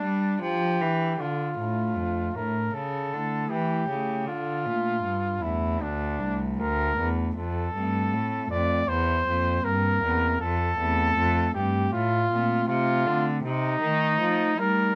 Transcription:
0.00 0.37 G3 medium
0.00 0.41 G3 medium
0.00 0.37 D4 medium
0.00 1.15 D4 medium
0.41 0.77 F3 medium
0.41 0.83 F3 medium
0.41 1.22 G4 medium
0.81 1.16 E3 soft
0.81 1.19 E3 medium
1.20 1.55 D3 medium
1.20 1.54 D3 soft
1.20 2.37 F4 medium
1.58 1.98 A2 medium
1.58 1.93 A2 soft
1.58 2.31 A3 soft
1.58 2.32 D4 soft
1.96 2.35 F2 soft
1.96 2.31 F2 soft
2.35 2.70 A2 soft
2.35 2.73 A2 soft
2.35 2.70 A3 soft
2.35 2.70 D4 soft
2.35 2.76 A#4 medium
2.74 3.08 C#3 soft
2.74 3.14 C#3 medium
2.74 3.51 A4 medium
3.13 3.50 D3 soft
3.13 3.47 D3 soft
3.13 3.86 A3 soft
3.13 3.86 E4 soft
3.50 3.88 E3 medium
3.50 3.86 E3 soft
3.50 4.26 G4 medium
3.89 4.29 C#3 soft
3.89 4.24 C#3 soft
3.89 4.24 A3 soft
3.89 4.24 E4 soft
4.27 4.67 D3 medium
4.27 4.62 D3 soft
4.27 5.44 F4 medium
4.66 5.03 A#2 medium
4.66 5.00 A#2 soft
4.66 5.00 A3 soft
4.66 5.39 D4 soft
5.03 5.41 G2 soft
5.03 5.38 G2 soft
5.42 5.82 E2 medium
5.42 5.77 E2 soft
5.42 5.77 A3 soft
5.42 5.78 D4 soft
5.42 5.83 E4 medium
5.81 6.21 D2 medium
5.81 6.16 D2 soft
5.81 6.43 D4 medium
6.20 6.61 C2 medium
6.20 6.56 C2 soft
6.20 6.95 A3 soft
6.20 6.95 D4 soft
6.59 6.97 D2 medium
6.59 6.95 D2 soft
6.59 7.09 A#4 medium
6.98 7.35 E2 medium
6.98 7.33 E2 soft
6.98 7.33 A3 soft
6.98 7.34 D4 soft
7.36 7.74 F2 medium
7.36 7.71 F2 soft
7.36 8.47 A4 medium
7.75 8.09 G2 soft
7.75 8.14 G2 medium
7.75 8.47 A3 soft
7.75 8.47 C4 soft
8.13 8.50 A2 medium
8.13 8.47 A2 soft
8.51 8.88 F2 medium
8.51 8.85 F2 soft
8.51 8.86 A3 soft
8.51 8.86 C4 soft
8.51 8.90 D5 medium
8.88 9.26 E2 medium
8.88 9.23 E2 soft
8.88 9.66 C5 medium
9.26 9.61 F2 medium
9.26 9.65 F2 medium
9.26 9.99 A#3 soft
9.26 10.00 C4 soft
9.64 9.99 G2 soft
9.64 10.03 G2 medium
9.64 10.40 A#4 medium
10.03 10.41 E2 medium
10.03 10.38 E2 soft
10.03 10.38 A#3 soft
10.03 10.38 C4 soft
10.41 10.78 F2 medium
10.41 10.76 F2 soft
10.41 11.53 A4 medium
10.79 11.16 E2 medium
10.79 11.14 E2 medium
10.79 11.52 A3 soft
10.79 11.52 C4 soft
11.17 11.55 F2 medium
11.17 11.52 F2 soft
11.55 11.92 G2 medium
11.55 11.90 G2 medium
11.55 11.90 A3 soft
11.55 11.90 C4 soft
11.55 11.92 G4 medium
11.93 12.30 A2 medium
11.93 12.28 A2 medium
11.93 12.67 F4 medium
12.31 12.68 A#2 medium
12.31 12.66 A#2 medium
12.31 13.03 A3 soft
12.31 13.03 C4 soft
12.68 13.08 C3 medium
12.68 13.03 C3 medium
12.68 13.27 F4 medium
13.06 13.43 D3 medium
13.06 13.41 D3 medium
13.06 13.41 A3 soft
13.06 13.41 C4 soft
13.44 13.78 C3 medium
13.44 13.81 C3 medium
13.44 14.60 D#4 medium
13.81 14.16 D#3 soft
13.81 14.19 D#3 medium
13.81 14.54 A3 soft
13.81 14.54 D#4 soft
14.20 14.54 F3 medium
14.20 14.57 F3 medium
14.58 14.92 G3 medium
14.58 14.95 G3 medium
14.58 14.92 A3 soft
14.58 14.92 D#4 soft
14.58 14.95 A#4 medium

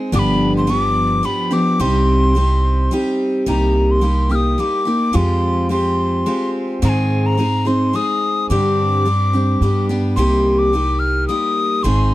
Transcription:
0.00 0.12 G#3 soft
0.00 0.12 C4 soft
0.00 0.13 D#4 medium
0.00 0.13 G#4 medium
0.12 1.20 G1 medium
0.12 0.68 G2 medium
0.12 0.68 D3 medium
0.12 0.66 F3 medium
0.12 0.66 B3 medium
0.12 0.67 D4 medium
0.12 0.69 G4 medium
0.12 0.20 D6 medium
0.19 0.53 B5 medium
0.57 0.72 C6 medium
0.67 1.22 F3 soft
0.67 1.23 B3 medium
0.67 1.23 D4 soft
0.67 1.25 G4 medium
0.67 1.27 D6 medium
1.23 1.51 F3 soft
1.23 1.51 B3 soft
1.23 1.50 D4 soft
1.23 1.49 G4 soft
1.23 1.55 B5 medium
1.51 1.79 F3 soft
1.51 1.80 B3 soft
1.51 1.80 D4 soft
1.51 1.79 G4 soft
1.51 1.82 D6 medium
1.79 2.87 C2 medium
1.79 2.35 C3 medium
1.79 2.34 G3 medium
1.79 2.35 C4 medium
1.79 2.35 D#4 medium
1.79 2.36 G4 medium
1.79 2.92 C6 medium
2.35 2.90 G3 soft
2.35 2.91 C4 soft
2.35 2.91 D#4 soft
2.35 2.92 G4 soft
2.91 3.45 G3 soft
2.91 3.47 C4 soft
2.91 3.46 D#4 medium
2.91 3.47 G4 medium
3.46 4.55 C2 medium
3.46 4.03 C3 medium
3.46 4.01 G3 medium
3.46 4.01 A#3 medium
3.46 4.02 D#4 medium
3.46 4.03 G4 medium
3.46 3.93 A#5 medium
3.91 4.33 C6 medium
4.01 4.30 G3 soft
4.01 4.30 A#3 soft
4.01 4.29 D#4 soft
4.01 4.28 G4 soft
4.29 4.58 A#3 soft
4.29 4.59 D#4 soft
4.29 4.58 G4 soft
4.29 4.36 F6 medium
4.35 4.61 D#6 medium
4.58 4.86 G3 soft
4.58 4.86 A#3 soft
4.58 4.86 D#4 soft
4.58 4.84 G4 soft
4.58 5.17 D6 medium
4.85 5.13 A#3 soft
4.85 5.14 D#4 soft
4.85 5.13 G4 soft
5.13 6.22 F2 medium
5.13 5.70 F3 medium
5.13 5.69 G#3 medium
5.13 5.70 C4 medium
5.13 5.70 F4 medium
5.13 5.70 G4 medium
5.13 5.71 C6 medium
5.69 6.25 G#3 soft
5.69 6.26 C4 soft
5.69 6.26 F4 soft
5.69 6.27 G4 soft
5.69 6.51 C6 medium
6.26 6.81 G#3 soft
6.26 6.82 C4 soft
6.26 6.83 F4 soft
6.26 6.83 G4 soft
6.82 7.38 G#2 medium
6.82 7.90 G#2 medium
6.82 7.38 D#3 medium
6.82 7.36 G#3 medium
6.82 7.37 C4 medium
6.82 7.38 D#4 medium
6.82 7.39 G#4 medium
6.82 6.90 A#5 medium
6.89 7.28 G#5 medium
7.26 7.69 A#5 medium
7.38 7.66 G#3 soft
7.38 7.65 C4 soft
7.38 7.65 D#4 soft
7.38 7.64 G#4 soft
7.65 7.92 G#3 soft
7.65 7.93 C4 soft
7.65 7.94 D#4 soft
7.65 7.93 G#4 soft
7.65 7.97 C6 medium
7.93 8.49 G#3 soft
7.93 8.50 C4 soft
7.93 8.50 D#4 soft
7.93 8.51 G#4 soft
7.93 8.49 D#6 medium
8.50 9.06 G2 medium
8.50 9.58 G2 medium
8.50 9.06 D3 medium
8.50 9.05 G3 medium
8.50 9.05 C4 medium
8.50 9.05 D4 medium
8.50 9.07 G4 medium
8.50 9.85 D6 medium
9.05 9.33 G3 soft
9.05 9.33 C4 soft
9.05 9.33 D4 soft
9.05 9.32 G4 soft
9.33 9.61 G3 soft
9.33 9.62 C4 soft
9.33 9.62 D4 soft
9.33 9.61 G4 soft
9.61 10.14 G2 medium
9.61 9.89 G3 soft
9.61 9.89 B3 soft
9.61 9.89 D4 soft
9.61 9.88 G4 soft
9.89 10.16 G3 soft
9.89 10.18 B3 soft
9.89 10.18 D4 soft
9.89 10.17 G4 soft
10.16 11.25 C2 medium
10.16 10.73 C3 medium
10.16 10.72 G3 medium
10.16 10.73 A#3 medium
10.16 10.74 D#4 medium
10.16 10.74 G4 medium
10.16 10.51 C6 medium
10.51 10.60 C6 soft
10.59 11.01 D6 medium
10.73 11.27 G3 soft
10.73 11.28 A#3 soft
10.73 11.29 D#4 soft
10.73 11.30 G4 soft
10.99 11.27 F6 medium
11.28 11.84 G3 soft
11.28 11.84 A#3 soft
11.28 11.84 D#4 soft
11.28 11.85 G4 soft
11.28 11.85 D#6 medium
11.83 12.14 G#1 medium
11.83 12.14 G#2 medium
11.83 12.14 D#3 medium
11.83 12.14 G#3 medium
11.83 12.14 C4 medium
11.83 12.14 D#4 medium
11.83 12.14 G#4 medium
11.83 12.14 C6 medium

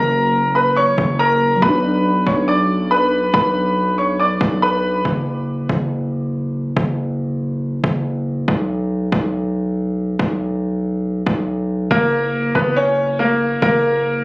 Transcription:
0.00 0.94 F#1 loud
0.00 1.55 F#3 medium
0.00 1.58 A#3 medium
0.00 1.61 C#4 medium
0.00 0.52 A#4 medium
0.00 0.51 A#5 loud
0.55 0.74 B4 medium
0.55 0.74 B5 medium
0.77 1.17 C#5 medium
0.77 1.17 C#6 medium
0.98 1.60 F#1 loud
1.19 1.60 A#4 medium
1.19 1.60 A#5 medium
1.57 4.98 F#3 medium
1.62 2.24 B1 loud
1.62 5.01 B3 medium
1.62 2.23 B4 medium
1.62 2.23 B5 medium
1.68 5.04 D4 medium
2.27 3.30 B1 loud
2.27 2.46 C#5 medium
2.27 2.45 C#6 medium
2.48 2.89 D5 medium
2.48 2.88 D6 medium
2.91 3.32 B4 medium
2.91 3.31 B5 medium
3.34 4.37 B1 loud
3.34 3.95 B4 medium
3.34 3.94 B5 medium
3.98 4.17 C#5 medium
3.98 4.17 C#6 medium
4.20 4.60 D5 medium
4.20 4.60 D6 medium
4.41 5.02 B1 loud
4.62 5.03 B4 medium
4.62 5.03 B5 medium
5.05 5.67 F#1 loud
5.69 6.72 F#1 loud
6.77 7.80 F#1 loud
7.84 8.45 F#1 loud
8.48 9.10 B1 loud
9.12 10.15 B1 loud
10.19 11.23 B1 loud
11.27 11.88 B1 loud
11.91 12.53 F#1 loud
11.91 12.52 A#3 medium
11.91 12.51 A#4 medium
12.55 13.58 F#1 loud
12.55 12.74 B3 medium
12.55 12.74 B4 medium
12.76 13.17 C#4 medium
12.76 13.17 C#5 medium
13.19 13.60 A#3 medium
13.19 13.60 A#4 medium
13.62 14.24 F#1 loud
13.62 14.23 A#3 medium
13.62 14.23 A#4 loud

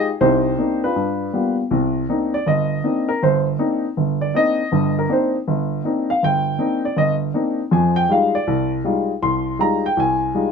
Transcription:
0.00 0.18 G#4 medium
0.21 0.53 C2 medium
0.21 0.53 C3 medium
0.21 0.57 D#4 medium
0.21 0.92 G4 medium
0.21 0.79 C5 medium
0.58 0.84 A#3 medium
0.58 0.84 C4 soft
0.58 0.83 D4 soft
0.58 0.84 D#4 medium
0.84 1.55 D4 soft
0.84 1.33 F4 medium
0.84 1.54 B4 medium
0.96 1.28 G2 medium
1.33 1.59 G3 medium
1.33 1.59 A#3 soft
1.33 1.59 B3 soft
1.33 1.60 F4 medium
1.71 2.03 C2 medium
1.71 2.04 C3 medium
2.09 2.35 A#3 medium
2.09 2.35 C4 medium
2.09 2.35 D4 soft
2.09 2.35 D#4 medium
2.34 2.46 D5 medium
2.47 2.79 G1 medium
2.47 3.05 D#5 medium
2.84 3.10 A#3 medium
2.84 3.10 C4 medium
2.84 3.10 D4 medium
2.84 3.10 D#4 medium
3.09 3.21 A#4 medium
3.23 3.54 G1 medium
3.23 3.46 C5 medium
3.59 3.85 A#3 medium
3.59 3.85 C4 medium
3.59 3.85 D4 medium
3.59 3.85 D#4 medium
3.97 4.29 G1 medium
4.21 4.34 D5 medium
4.34 4.60 A#3 medium
4.34 4.60 C4 medium
4.34 4.60 D4 medium
4.34 4.60 D#4 medium
4.34 4.93 D#5 medium
4.72 5.04 G1 medium
4.72 5.04 G2 medium
4.99 5.10 A#4 medium
5.09 5.35 A#3 medium
5.09 5.35 C4 medium
5.09 5.35 D4 soft
5.09 5.35 D#4 medium
5.09 5.35 C5 medium
5.48 5.80 G1 medium
5.84 6.10 A#3 medium
5.84 6.10 C4 soft
5.84 6.10 D4 soft
5.84 6.10 D#4 medium
6.10 6.22 F5 medium
6.23 6.55 G1 medium
6.23 6.81 G5 medium
6.59 6.84 A#3 medium
6.59 6.85 C4 medium
6.59 6.85 D4 soft
6.59 6.85 D#4 medium
6.85 6.97 D5 medium
6.97 7.29 G1 medium
6.97 7.12 D#5 medium
7.34 7.60 A#3 medium
7.34 7.60 C4 soft
7.34 7.60 D4 soft
7.34 7.60 D#4 medium
7.71 8.04 F2 medium
7.71 8.04 F3 medium
7.71 7.96 G#5 medium
7.96 8.09 G5 medium
8.09 8.35 G3 medium
8.09 8.35 G#3 medium
8.09 8.35 D#4 soft
8.09 8.35 F4 medium
8.09 8.34 F5 medium
8.35 8.69 D5 medium
8.47 8.79 C2 medium
8.84 9.10 G3 medium
8.84 9.10 G#3 soft
8.84 9.10 D#4 soft
8.84 9.11 F4 medium
9.22 9.54 C2 medium
9.22 9.57 C6 medium
9.59 9.85 G3 medium
9.59 9.85 G#3 soft
9.59 9.85 D#4 medium
9.59 9.85 F4 medium
9.59 9.84 A#5 medium
9.86 9.97 G5 medium
9.97 10.29 C2 medium
9.97 10.52 G#5 medium
10.34 10.52 G3 medium
10.34 10.52 G#3 medium
10.34 10.52 D#4 soft
10.34 10.52 F4 medium

